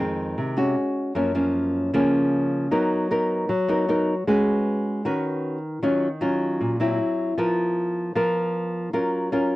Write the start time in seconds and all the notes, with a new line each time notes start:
Already playing: F2
0.00 D#3 G#3 C4
0.38 C3
0.57 G#3 C#4 F#4
1.15 F#2 F3 A#3 C#4
1.35 F3 A#3 C#4
1.94 C#3 F3 A#3 C#4
2.71 F#3 B3 D#4 A#4
3.11 B3 D#4 A#4
3.49 F#3
3.68 B3 D#4 A#4
3.88 B3 D#4 A#4
4.27 G#3 C#4 F#4 B4
5.05 D#3 C#4 F#4 B4
5.82 D#3 F#3 C#4 F4
6.21 F#3 C#4 F4
6.61 A#2
6.80 F#3 C4 E4
7.38 F3 B3 F4 A#4
8.15 F3 B3 F4 A#4
8.93 F#3 C#4 F4 A#4
9.32 C#4 F4 A#4